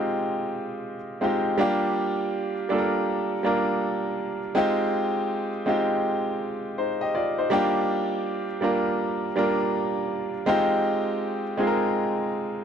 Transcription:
0.00 1.21 G#3 loud
0.00 1.21 C4 medium
0.00 1.22 D#4 medium
0.00 1.23 F4 medium
0.00 1.24 G4 loud
1.21 1.53 G#3 medium
1.21 1.53 C4 medium
1.21 1.54 D#4 medium
1.21 1.54 F4 medium
1.21 1.55 G4 medium
1.58 2.52 G3 loud
1.58 2.53 A#3 medium
1.58 2.53 D4 medium
1.58 2.53 F4 medium
1.58 2.54 G4 loud
2.69 3.33 G3 medium
2.69 3.33 A#3 medium
2.69 3.34 D4 medium
2.69 3.34 F4 medium
2.69 2.79 A4 medium
2.78 3.38 A#4 medium
3.43 4.38 G3 medium
3.43 4.38 A#3 medium
3.43 4.39 D4 medium
3.43 4.39 F4 medium
3.43 4.39 A#4 medium
4.55 5.49 G#3 loud
4.55 5.49 C4 medium
4.55 5.50 D#4 medium
4.55 5.50 F4 medium
4.55 5.51 G4 loud
5.66 6.89 G#3 medium
5.66 6.89 C4 medium
5.66 6.77 D#4 medium
5.66 6.78 F4 medium
5.66 6.79 G4 medium
6.78 7.00 D#4 soft
6.78 7.00 C5 medium
7.01 7.15 G4 medium
7.01 7.14 D#5 medium
7.15 7.37 F4 medium
7.15 7.36 D5 medium
7.38 7.73 D#4 soft
7.38 7.73 C5 medium
7.50 8.45 G3 loud
7.50 8.45 A#3 medium
7.50 8.46 D4 medium
7.50 8.46 F4 medium
7.50 8.46 G4 loud
8.61 9.25 G3 medium
8.61 9.26 A#3 medium
8.61 9.26 D4 medium
8.61 9.26 F4 medium
8.61 9.27 A#4 medium
9.36 10.30 G3 medium
9.36 10.31 A#3 medium
9.36 10.31 D4 medium
9.36 10.31 F4 medium
9.36 10.32 A#4 medium
10.46 11.41 G#3 loud
10.46 11.41 C4 medium
10.46 11.42 D#4 loud
10.46 11.42 F4 medium
10.46 11.43 G4 loud
11.57 12.64 G#3 medium
11.57 12.64 C4 medium
11.57 12.64 D#4 medium
11.57 12.64 F4 medium
11.57 11.68 G#4 medium
11.67 12.64 A#4 medium

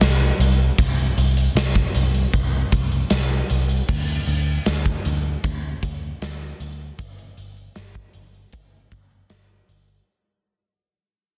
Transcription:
0.01 0.31 C2 medium
0.01 snare loud
0.01 closed hi-hat loud
0.39 0.69 C2 medium
0.39 closed hi-hat medium
0.78 1.08 C2 loud
0.78 kick loud
0.78 closed hi-hat loud
0.99 closed hi-hat medium
1.18 1.47 C2 loud
1.18 closed hi-hat medium
1.37 closed hi-hat medium
1.55 1.85 C2 medium
1.55 snare loud
1.55 closed hi-hat loud
1.75 kick medium
1.75 snare soft
1.75 closed hi-hat medium
1.95 2.25 C2 medium
1.95 closed hi-hat medium
2.14 closed hi-hat medium
2.33 2.63 C2 loud
2.33 kick loud
2.33 closed hi-hat loud
2.72 3.02 C2 loud
2.72 kick medium
2.72 closed hi-hat medium
2.92 closed hi-hat soft
3.10 3.41 C2 loud
3.10 snare loud
3.10 closed hi-hat loud
3.50 3.80 C2 loud
3.50 closed hi-hat medium
3.69 closed hi-hat soft
3.88 4.19 D2 loud
3.88 kick loud
3.88 crash loud
4.08 closed hi-hat medium
4.27 4.57 D2 loud
4.27 closed hi-hat medium
4.66 4.96 D2 medium
4.66 snare loud
4.66 closed hi-hat loud
4.85 kick loud
4.85 closed hi-hat medium
5.05 5.35 D2 loud
5.05 closed hi-hat medium
5.44 5.74 D2 loud
5.44 kick loud
5.44 closed hi-hat loud
5.83 6.12 D2 medium
5.83 kick medium
5.83 closed hi-hat medium
6.22 6.51 D2 loud
6.22 snare loud
6.22 closed hi-hat loud
6.60 6.90 D2 loud
6.60 closed hi-hat medium
6.98 7.28 G1 loud
6.98 kick loud
6.98 closed hi-hat loud
7.19 closed hi-hat medium
7.37 7.67 G1 loud
7.37 closed hi-hat medium
7.57 closed hi-hat medium
7.76 8.06 G1 medium
7.76 snare loud
7.76 closed hi-hat loud
7.95 kick medium
7.95 closed hi-hat medium
8.13 8.44 G1 loud
8.13 closed hi-hat medium
8.34 closed hi-hat medium
8.53 8.83 G1 loud
8.53 kick loud
8.53 closed hi-hat loud
8.92 9.22 G1 medium
8.92 kick medium
8.92 closed hi-hat medium
9.11 closed hi-hat medium
9.30 9.60 G1 medium
9.30 snare loud
9.30 closed hi-hat loud
9.69 9.99 G1 medium
9.69 closed hi-hat medium
9.88 closed hi-hat medium

